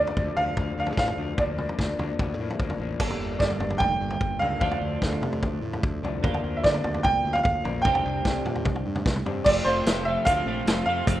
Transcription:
Already playing: fingered electric bass D2, clean electric guitar F3 A3, upright piano D5
0.00 clean electric guitar D4
0.07 floor tom
0.16 fingered electric bass D2, clean electric guitar F3 A3 D4, kick, mid tom
0.37 fingered electric bass D2, clean electric guitar F3 A3 D4, upright piano F5, floor tom
0.57 fingered electric bass D2, clean electric guitar F3 A3 D4, kick, floor tom
0.78 fingered electric bass D2, clean electric guitar F3 A3 D4, upright piano F5
0.86 floor tom
0.97 fingered electric bass A2, clean electric guitar F3 A3 D4, upright piano F5, kick, snare
1.07 floor tom
1.17 fingered electric bass D2, clean electric guitar F3 A3 D4
1.38 fingered electric bass D2, clean electric guitar F3 A#3 D4, upright piano D5, kick, floor tom
1.58 clean electric guitar F3 A#3 D4, mid tom
1.69 floor tom
1.79 fingered electric bass D2, clean electric guitar F3 A#3 D4, kick, snare, mid tom
1.98 fingered electric bass D2, clean electric guitar F3 A#3 D4, floor tom, mid tom
2.19 fingered electric bass D2, clean electric guitar F3 A#3 D4, kick, floor tom
2.37 fingered electric bass A2, clean electric guitar F3 A#3 D4
2.50 floor tom
2.59 fingered electric bass D2, clean electric guitar F3 A#3 D4, kick
2.70 floor tom, mid tom
2.78 fingered electric bass A1, clean electric guitar F3 A#3 D4
3.00 fingered electric bass G1, clean electric guitar G2 D3 G3 A#3 D4 A4, kick, floor tom, crash
3.10 floor tom
3.19 fingered electric bass G1
3.39 fingered electric bass G2, upright piano D5, kick, snare
3.50 floor tom
3.59 fingered electric bass G1, floor tom, mid tom
3.70 floor tom
3.78 fingered electric bass F1, upright piano G5, kick, floor tom, mid tom
4.00 fingered electric bass G1
4.10 floor tom
4.21 fingered electric bass G1, kick
4.39 fingered electric bass C#2, clean electric guitar A#3 D4 A4, upright piano F5, floor tom
4.43 clean electric guitar G3
4.60 fingered electric bass D2, clean electric guitar D3 F3 A3 D4 F4, upright piano F5, kick, floor tom
4.71 floor tom
4.81 fingered electric bass D2
5.02 fingered electric bass D2, kick, snare
5.12 floor tom
5.21 fingered electric bass C3, floor tom, mid tom
5.32 floor tom
5.43 fingered electric bass D2, kick, floor tom, mid tom
5.62 fingered electric bass A2
5.73 floor tom
5.83 fingered electric bass D2, kick
6.03 fingered electric bass C2, clean electric guitar F3 A3 D4, floor tom
6.23 fingered electric bass D2, clean electric guitar D3 F3 A#3 D4 F4, kick, floor tom
6.34 floor tom
6.44 fingered electric bass D2
6.57 upright piano E5
6.63 fingered electric bass D3, upright piano D5, kick, snare
6.74 floor tom
6.84 fingered electric bass D2, floor tom, mid tom
6.94 floor tom
7.03 fingered electric bass C2, upright piano G5, kick, floor tom, mid tom
7.25 fingered electric bass D2
7.33 upright piano F5, floor tom
7.43 fingered electric bass D2, upright piano F5, kick
7.64 fingered electric bass A#1, clean electric guitar F3 A#3 D4, floor tom
7.82 fingered electric bass C2, clean electric guitar C3 G3, upright piano G5, kick, floor tom
7.86 clean electric guitar C4 D4 G4
7.95 floor tom
8.05 fingered electric bass C2
8.25 fingered electric bass C2, kick, snare
8.45 fingered electric bass A#2, floor tom
8.55 floor tom
8.65 fingered electric bass C2, kick, floor tom, mid tom
8.76 floor tom
8.86 fingered electric bass G2
8.95 floor tom, mid tom
9.06 fingered electric bass C2, kick, snare
9.16 mid tom
9.26 fingered electric bass G2, clean electric guitar G3 C4 D4, floor tom
9.44 fingered electric bass F1, clean electric guitar F2 C3 F3 A3 C4 F4, upright piano D5, kick, crash
9.65 fingered electric bass F1, clean electric guitar F2 C3 F3 A3 C4 F4, upright piano C5
9.86 fingered electric bass F1, clean electric guitar F2 C3 F3 A3 C4 F4, snare, closed hi-hat
10.05 clean electric guitar F2 C3 F3 A3 C4 F4, upright piano E5
10.25 fingered electric bass D2, clean electric guitar F2 C3 F3 A3 C4 F4, upright piano F5, kick, closed hi-hat
10.46 fingered electric bass A#1, clean electric guitar F2 C3 F3 A3 C4 F4
10.66 fingered electric bass F1, clean electric guitar F2 C3 F3 A3 C4 F4, snare, closed hi-hat
10.86 fingered electric bass F2, clean electric guitar F2 C3 F3 A3 C4 F4, upright piano F5
11.07 fingered electric bass F1, clean electric guitar F2 C3 F3 A3 C4 F4, kick, closed hi-hat

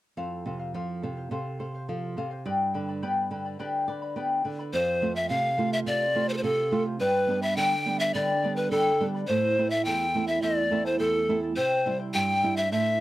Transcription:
0.17 nylon-string guitar F2, charango A4 C5 F5
0.46 nylon-string guitar C3, charango A4 C5 F5
0.59 charango C5 F5
0.74 nylon-string guitar F3, charango A4 C5 F5
1.02 nylon-string guitar C3, charango A4 C5 F5
1.17 charango C5 F5
1.31 nylon-string guitar C3, charango A4 C5 F5
1.59 charango A4 C5 F5, nylon-string guitar C5
1.74 charango C5 F5
1.88 nylon-string guitar F3, charango A4 C5 F5
2.17 nylon-string guitar C3, charango A4 C5 F5
2.31 charango C5 F5
2.46 nylon-string guitar G2, charango G4 B4 D5 G5 B5
2.74 nylon-string guitar D3, charango B4 D5 G5 B5
2.89 charango B4 D5 B5
3.02 nylon-string guitar B3, charango G4 B4 D5 G5 B5
3.31 nylon-string guitar D3, charango B4 D5 G5 B5
3.45 charango B4 D5 B5
3.59 nylon-string guitar D3, charango G4 B4 D5 G5 B5
3.88 charango B4 D5 G5 B5, nylon-string guitar D5
4.02 charango B4 D5 B5
4.16 nylon-string guitar B3, charango G4 B4 D5 G5 B5
4.44 nylon-string guitar D3, charango B4 D5 G5 B5
4.59 charango B4 D5 B5
4.73 nylon-string guitar F2, charango A4 C5 F5, pan flute C5
5.01 nylon-string guitar A3 C4 F4, charango A4 C5 F5
5.15 charango C5 F5, pan flute E5
5.29 nylon-string guitar C3, charango A4 C5 F5, pan flute F5
5.58 nylon-string guitar A3 C4 F4, charango A4 C5 F5
5.72 charango C5 F5, pan flute E5
5.86 nylon-string guitar C3, charango A4 C5 F5, pan flute D5
6.15 nylon-string guitar A3 C4 F4, charango A4 C5 F5
6.29 pan flute C5, charango C5 F5
6.34 pan flute A4 C5
6.43 nylon-string guitar C3, pan flute A4, charango A4 C5 F5
6.71 nylon-string guitar A3 C4 F4, charango A4 C5 F5
6.86 charango C5 F5
7.00 nylon-string guitar G2, charango G4 B4 D5 G5 B5, pan flute B4
7.27 nylon-string guitar G3 B3 D4, charango B4 D5 G5 B5
7.42 charango B4 D5 B5, pan flute E5
7.57 nylon-string guitar D3, charango G4 B4 D5 G5 B5, pan flute G5
7.86 nylon-string guitar G3 B3 D4, charango B4 D5 G5 B5
8.00 charango B4 D5 B5, pan flute E5
8.14 nylon-string guitar D3, charango G4 B4 D5 G5 B5, pan flute D5
8.43 nylon-string guitar G3 B3 D4, charango B4 D5 G5 B5
8.56 pan flute B4, charango B4 D5 B5
8.71 nylon-string guitar D3, charango G4 B4 D5 G5 B5, pan flute A4
9.00 nylon-string guitar G3 B3 D4, charango B4 D5 G5 B5
9.15 charango B4 D5 B5
9.27 nylon-string guitar A2, charango E4 A4 C5 E5 A5, pan flute C5
9.57 nylon-string guitar A3 C4 E4, charango E4 A4 E5 A5
9.70 charango E4 A4 A5, pan flute E5
9.85 nylon-string guitar E2, charango E4 A4 C5 E5 A5, pan flute G5
10.15 nylon-string guitar A3 C4 E4, charango E4 A4 E5 A5
10.28 charango E4 A4 A5, pan flute E5
10.42 nylon-string guitar E2, charango E4 A4 C5 E5 A5, pan flute D5
10.71 nylon-string guitar A3 C4 E4, charango E4 A4 E5 A5
10.85 charango E4 A4 A5, pan flute C5
10.99 nylon-string guitar E2, charango E4 A4 C5 E5 A5, pan flute A4
11.29 nylon-string guitar A3 C4 E4, charango E4 A4 E5 A5
11.43 charango E4 A4 A5
11.56 nylon-string guitar C3, charango E4 G4 C5 E5 G5, pan flute C5
11.85 nylon-string guitar G3 C4 E4, charango E4 C5 E5 G5
12.00 charango E4 C5 G5
12.14 nylon-string guitar G2, charango E4 G4 C5 E5 G5, pan flute G5
12.43 nylon-string guitar G3 C4 E4, charango E4 C5 E5 G5
12.57 charango E4 C5 G5, pan flute E5
12.71 nylon-string guitar A2, charango E4 A4 C5 E5 A5, pan flute E5

